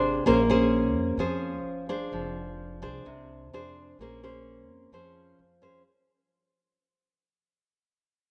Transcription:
0.00 0.23 G#1 medium
0.00 0.25 C3 medium
0.00 0.24 D4 medium
0.00 0.25 G#4 medium
0.00 0.25 C5 medium
0.26 0.95 A#1 medium
0.26 1.17 A#3 medium
0.26 0.40 C#4 soft
0.26 0.40 G#4 medium
0.26 0.40 C5 medium
0.50 1.16 C#4 medium
0.50 1.16 G#4 medium
0.50 1.16 C5 medium
0.95 1.17 F2 medium
1.18 1.65 F2 medium
1.18 2.10 F3 soft
1.18 1.85 C#4 medium
1.18 1.86 G#4 soft
1.18 1.86 C5 medium
1.65 2.09 G1 medium
1.89 2.79 D4 medium
1.89 2.79 G#4 medium
1.89 2.79 C5 medium
2.12 2.84 F1 medium
2.12 3.03 F3 soft
2.82 3.04 C2 medium
2.82 3.48 D4 soft
2.82 3.49 G#4 medium
2.82 3.48 C5 medium
3.05 3.52 C2 medium
3.05 3.97 C3 soft
3.52 3.96 F2 medium
3.52 3.98 D4 soft
3.52 3.98 G#4 medium
3.52 3.98 C5 medium
3.99 4.69 A#1 medium
3.99 4.91 A#3 medium
3.99 4.19 C#4 soft
3.99 4.20 G#4 medium
3.99 4.20 C5 medium
4.23 4.89 C#4 medium
4.23 4.89 G#4 medium
4.23 4.89 C5 medium
4.69 4.90 F2 medium
4.92 5.35 F2 medium
4.92 5.83 F3 soft
4.92 5.39 C#4 soft
4.92 5.39 G#4 medium
4.92 5.39 C5 medium
5.39 5.82 F2 medium
5.62 5.81 C#4 soft
5.62 5.82 G#4 soft
5.62 5.82 C5 medium

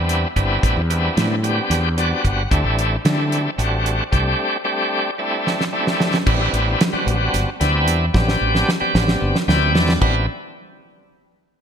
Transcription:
0.00 0.24 E2 medium
0.00 0.28 G3 medium
0.00 0.28 B3 medium
0.00 0.28 C4 medium
0.00 0.28 D4 medium
0.00 0.28 E4 medium
0.09 closed hi-hat medium
0.36 0.57 G1 medium
0.36 0.82 G3 medium
0.36 0.82 B3 medium
0.36 0.82 C4 medium
0.36 0.82 D4 medium
0.36 0.82 E4 loud
0.36 kick medium
0.36 closed hi-hat medium
0.63 0.74 A1 medium
0.63 kick loud
0.63 closed hi-hat medium
0.77 1.08 E2 medium
0.90 1.35 G3 medium
0.90 1.35 B3 medium
0.90 1.35 C4 medium
0.90 1.36 D4 medium
0.90 1.36 E4 medium
0.90 closed hi-hat medium
1.17 1.59 A2 medium
1.17 snare loud
1.17 closed hi-hat medium
1.43 1.89 G3 medium
1.43 1.89 B3 medium
1.43 1.89 C4 medium
1.43 1.89 D4 medium
1.43 1.89 G4 medium
1.43 closed hi-hat medium
1.70 2.12 E2 medium
1.70 snare soft
1.70 closed hi-hat medium
1.97 2.43 G3 medium
1.97 2.43 B3 medium
1.97 2.43 C4 medium
1.97 2.43 D4 medium
1.97 2.43 F#4 loud
1.97 2.23 D5 medium
1.97 closed hi-hat medium
2.24 2.45 G1 medium
2.24 2.49 F#5 medium
2.24 kick medium
2.24 closed hi-hat medium
2.51 2.62 D2 medium
2.51 2.96 G3 medium
2.51 2.96 A3 medium
2.51 2.97 C4 medium
2.51 2.97 D4 medium
2.51 2.97 E4 loud
2.51 kick medium
2.51 closed hi-hat medium
2.64 2.96 A1 medium
2.79 closed hi-hat medium
3.05 3.47 D3 medium
3.05 3.50 G3 medium
3.05 3.50 A3 medium
3.05 3.51 C4 medium
3.05 3.51 D4 medium
3.05 3.51 E4 medium
3.05 snare loud
3.05 closed hi-hat medium
3.32 closed hi-hat medium
3.58 4.00 A1 medium
3.58 4.04 G3 medium
3.58 4.04 A3 medium
3.58 4.04 C4 medium
3.58 4.04 D4 medium
3.58 4.04 F#4 medium
3.58 closed hi-hat medium
3.86 closed hi-hat medium
4.11 4.33 C2 medium
4.11 4.57 G3 medium
4.11 4.57 A3 medium
4.11 4.57 C4 medium
4.11 4.58 D4 medium
4.11 4.58 G4 loud
4.11 kick medium
4.11 closed hi-hat medium
4.64 5.11 G3 medium
4.64 5.11 A3 medium
4.64 5.11 C4 medium
4.64 5.11 D4 medium
4.64 5.11 G4 loud
5.18 5.64 G3 medium
5.18 5.65 A3 medium
5.18 5.65 C4 medium
5.18 5.65 D4 medium
5.18 5.65 E4 medium
5.47 snare medium
5.61 snare medium
5.72 6.18 G3 medium
5.72 6.18 A3 medium
5.72 6.18 C4 medium
5.72 6.18 D4 medium
5.72 6.18 E4 loud
5.87 snare medium
6.00 snare medium
6.14 snare medium
6.26 6.48 A1 medium
6.26 6.83 G3 medium
6.26 6.83 B3 medium
6.26 6.83 C4 medium
6.26 6.83 D4 medium
6.26 6.83 E4 medium
6.26 kick loud
6.26 crash medium
6.53 6.74 A1 medium
6.53 closed hi-hat medium
6.81 snare loud
6.81 closed hi-hat medium
6.93 7.50 G3 medium
6.93 7.50 B3 medium
6.93 7.50 C4 medium
6.93 7.50 D4 medium
6.93 7.50 F#4 medium
6.93 muted fretless electric bass stroke soft
7.07 7.28 A1 loud
7.07 closed hi-hat medium
7.34 7.44 G1 medium
7.34 snare soft
7.34 closed hi-hat medium
7.60 7.88 D2 medium
7.60 8.06 G3 medium
7.60 8.06 B3 medium
7.60 8.06 C4 medium
7.60 8.06 D4 medium
7.60 8.06 E4 loud
7.60 snare soft
7.60 closed hi-hat medium
7.88 8.09 E2 medium
7.88 closed hi-hat medium
8.13 8.35 A1 loud
8.13 8.70 G3 medium
8.13 8.71 B3 medium
8.13 8.71 C4 medium
8.13 8.71 D4 medium
8.13 8.71 G4 medium
8.13 kick loud
8.13 snare medium
8.28 snare medium
8.41 8.62 A1 medium
8.55 snare medium
8.69 snare medium
8.80 9.37 G3 medium
8.80 9.37 B3 medium
8.80 9.37 C4 medium
8.80 9.38 D4 medium
8.80 9.38 G4 loud
8.80 muted fretless electric bass stroke soft
8.95 9.16 A1 loud
8.95 snare medium
9.08 snare medium
9.22 9.32 G1 medium
9.36 snare medium
9.48 9.75 D2 medium
9.48 9.93 G3 medium
9.48 9.93 B3 medium
9.48 9.93 C4 medium
9.48 9.93 D4 medium
9.48 9.93 E4 loud
9.48 9.73 G5 medium
9.48 snare medium
9.75 9.96 E2 medium
9.75 10.00 D5 medium
9.75 snare loud
9.89 snare medium
10.01 10.26 A1 medium
10.01 10.26 G3 medium
10.01 10.26 B3 medium
10.01 10.26 C4 medium
10.01 10.26 D4 medium
10.01 10.26 E4 medium
10.01 kick loud
10.01 crash medium

